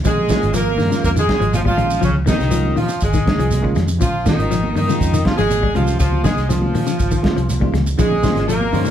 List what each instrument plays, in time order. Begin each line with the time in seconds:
0.04 fingered electric bass A#1, tine electric piano D#3 G#3 C#4 F4, clean electric guitar F3, alto saxophone G#3, baritone saxophone G#3, horn section G#4, kick, closed hi-hat, low conga, shekere
0.18 high conga
0.28 tine electric piano D#3 G#3 C#4 F4, clean electric guitar D#3, kick, snare, closed hi-hat, high conga, shekere
0.42 fingered electric bass G#1, closed hi-hat, shekere
0.54 clean electric guitar F3, alto saxophone A#3, baritone saxophone A#3, horn section A#4, snare, closed hi-hat, shekere
0.68 high conga
0.78 fingered electric bass G2, clean electric guitar D#3, snare, open hi-hat, low conga, shekere
0.90 clean electric guitar C#3, tine electric piano D#3 G#3 C#4 F4, snare, closed hi-hat, shekere
1.04 fingered electric bass F2, alto saxophone A#3, baritone saxophone A#3, horn section A#4, kick, closed hi-hat, shekere
1.16 clean electric guitar D#3, baritone saxophone G#3, alto saxophone G#3, horn section G#4, shekere
1.29 muted fingered electric bass stroke, kick, snare, closed hi-hat, high conga
1.40 fingered electric bass G#1, clean electric guitar F3, closed hi-hat, shekere
1.53 baritone saxophone F3, alto saxophone F3, horn section F4, closed hi-hat, high conga, shekere
1.65 alto saxophone F3, baritone saxophone F3, clean electric guitar G3, horn section F4, kick, high conga
1.77 fingered electric bass A#1, tine electric piano D#3 G#3 C#4 F4, clean electric guitar G#3, closed hi-hat, low conga, shekere
1.90 shekere
2.01 fingered electric bass C#2, alto saxophone C#3, clean electric guitar F3, horn section C#4, kick, closed hi-hat, low conga, shekere
2.06 baritone saxophone C#3
2.26 clean electric guitar D#3, horn section D#4, kick, snare, closed hi-hat, high conga, low conga, shekere
2.31 baritone saxophone D#3, alto saxophone D#3
2.40 fingered electric bass C2, snare, closed hi-hat, shekere
2.51 tine electric piano D#3 G#3 C#4 F4, clean electric guitar F3, closed hi-hat, shekere
2.65 high conga
2.76 fingered electric bass A#2, clean electric guitar D#3, baritone saxophone F3, horn section F4, open hi-hat, low conga, shekere
2.80 alto saxophone F3
2.89 muted clean electric guitar stroke, closed hi-hat, shekere
3.00 fingered electric bass G#1, baritone saxophone G#3, alto saxophone G#3, horn section G#4, kick, closed hi-hat, shekere
3.13 clean electric guitar D#3, kick, snare, shekere
3.25 tine electric piano D#3 G#3 C#4 D#4, muted fingered electric bass stroke, kick, snare, closed hi-hat, high conga
3.38 fingered electric bass C2, clean electric guitar F3, closed hi-hat, shekere
3.51 closed hi-hat, high conga, shekere
3.62 tine electric piano D#3 G#3 C#4 F4, muted clean electric guitar stroke, kick
3.75 fingered electric bass F2, clean electric guitar G#3, snare, closed hi-hat, low conga, shekere
3.88 shekere
3.99 fingered electric bass A#1, tine electric piano D#3 G#3 C#4 F4, clean electric guitar F3, baritone saxophone F3, kick, closed hi-hat, shekere
4.03 alto saxophone F3, horn section F4
4.25 tine electric piano D#3 G#3 C#4 F4, clean electric guitar D#3, baritone saxophone D#3, alto saxophone D#3, horn section D#4, kick, snare, closed hi-hat, high conga, low conga, shekere
4.38 fingered electric bass G#1, closed hi-hat, shekere
4.51 clean electric guitar F3, snare, closed hi-hat, shekere
4.63 high conga
4.75 fingered electric bass G2, clean electric guitar D#3, baritone saxophone D#3, alto saxophone D#3, horn section D#4, open hi-hat, low conga, shekere
4.87 clean electric guitar C#3, tine electric piano D#3 G#3 C#4 F4, snare, closed hi-hat, shekere
5.01 fingered electric bass F2, kick, closed hi-hat, shekere
5.14 clean electric guitar D#3, shekere
5.25 baritone saxophone F3, alto saxophone F3, horn section F4, kick, snare, closed hi-hat, high conga
5.38 fingered electric bass G#1, clean electric guitar F3, baritone saxophone G#3, alto saxophone G#3, horn section G#4, snare, closed hi-hat, shekere
5.50 closed hi-hat, high conga, shekere
5.63 clean electric guitar G3, kick
5.74 fingered electric bass C2, tine electric piano D#3 G#3 C#4 G4, alto saxophone F3, baritone saxophone F3, clean electric guitar G#3, horn section F4, closed hi-hat, low conga, shekere
5.87 shekere
5.99 fingered electric bass C#2, baritone saxophone F3, alto saxophone F3, horn section F4, muted clean electric guitar stroke, kick, closed hi-hat, shekere
6.12 high conga
6.24 clean electric guitar D#3, baritone saxophone G#3, alto saxophone G#3, horn section G#4, kick, snare, closed hi-hat, high conga, shekere
6.37 fingered electric bass C2, snare, closed hi-hat, shekere
6.49 tine electric piano D#3 G#3 C#4 F4, clean electric guitar F3, baritone saxophone F3, alto saxophone F3, horn section F4, snare, closed hi-hat, shekere
6.61 high conga
6.75 fingered electric bass A#2, clean electric guitar D#3, open hi-hat, low conga, shekere
6.87 clean electric guitar C#3, snare, closed hi-hat, shekere
6.99 fingered electric bass G#1, kick, closed hi-hat, shekere
7.11 clean electric guitar D#3, kick, shekere
7.23 tine electric piano D#3 G#3 C#4 F4, muted fingered electric bass stroke, kick, snare, closed hi-hat, high conga
7.36 fingered electric bass C2, clean electric guitar F3, closed hi-hat, shekere
7.49 closed hi-hat, high conga, shekere
7.60 tine electric piano D#3 G#3 C#4 F4, clean electric guitar G3, kick, high conga
7.74 fingered electric bass C#2, clean electric guitar G#3, snare, closed hi-hat, low conga, shekere
7.87 shekere
7.98 fingered electric bass A#1, tine electric piano D#3 G#3 C#4 F4, clean electric guitar F3 C#4 D#4 G#4, baritone saxophone G#3, alto saxophone G#3, horn section G#4, muted clean electric guitar stroke, kick, closed hi-hat, shekere
8.12 high conga
8.22 tine electric piano D#3 G#3 C#4 F4, clean electric guitar D#3 C#4 D#4 G#4 C5, kick, snare, closed hi-hat, high conga, shekere
8.36 fingered electric bass G#1, snare, closed hi-hat, shekere
8.48 clean electric guitar F3, alto saxophone A#3, baritone saxophone A#3, horn section A#4, closed hi-hat, shekere
8.61 high conga
8.73 fingered electric bass G2, clean electric guitar D#3 C#4 D#4 G#4 C5, open hi-hat, low conga, shekere
8.84 clean electric guitar C#3, tine electric piano D#3 G#3 C#4 F4, closed hi-hat, shekere